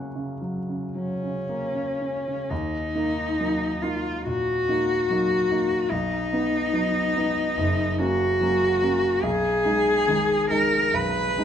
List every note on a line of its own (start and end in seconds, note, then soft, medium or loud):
0.00 0.39 F#2 soft
0.00 0.15 C#3 soft
0.00 0.41 F#3 soft
0.00 1.49 A#3 soft
0.00 0.32 C#4 soft
0.00 2.53 F5 soft
0.00 1.44 F#5 soft
0.00 2.53 C#6 soft
0.00 2.54 F6 medium
0.00 1.47 F#6 soft
0.15 0.59 C#3 soft
0.41 0.85 F#3 soft
0.69 1.12 C#3 soft
0.95 1.38 F#3 soft
0.95 2.52 C#4 soft
1.24 1.65 C#3 soft
1.49 1.91 A#3 soft
1.75 2.17 C#3 soft
2.01 2.41 C#4 soft
2.28 2.51 C#3 soft
2.50 2.95 D#2 soft
2.50 3.84 D#4 medium
2.95 3.36 A#3 soft
2.95 3.36 D#4 soft
3.40 3.79 F#3 soft
3.40 3.79 A#3 soft
3.40 3.79 D#4 soft
3.82 4.21 A#3 soft
3.82 4.22 D#4 soft
3.82 4.26 F4 medium
4.25 4.67 A#2 soft
4.25 5.92 F#4 medium
4.69 5.06 A#3 soft
4.69 5.06 D#4 soft
5.10 5.47 F#3 soft
5.10 5.47 A#3 soft
5.10 5.47 D#4 soft
5.51 5.88 A#3 soft
5.51 5.88 D#4 soft
5.90 6.32 B1 soft
5.90 8.00 D#4 medium
6.33 6.71 B3 soft
6.33 6.71 D#4 soft
6.73 7.11 F#3 soft
6.73 7.11 B3 soft
6.73 7.12 D#4 soft
7.17 7.54 B3 soft
7.17 7.54 D#4 soft
7.57 7.98 F#1 soft
7.98 8.37 A#3 soft
7.98 8.38 C#4 soft
7.98 9.25 F#4 medium
8.41 8.78 F#3 soft
8.41 8.79 A#3 soft
8.41 8.79 C#4 soft
8.82 9.19 A#3 soft
8.82 9.20 C#4 soft
9.23 9.63 B1 medium
9.23 10.50 G#4 medium
9.65 10.03 G#3 soft
9.65 10.03 D#4 soft
10.07 10.46 D#3 soft
10.07 10.47 G#3 soft
10.07 10.47 D#4 soft
10.50 10.90 G#3 soft
10.50 10.90 D#4 soft
10.50 10.95 A#4 medium
10.93 11.36 B1 soft
10.93 11.44 B4 medium
11.38 11.44 G#3 soft
11.38 11.44 D#4 soft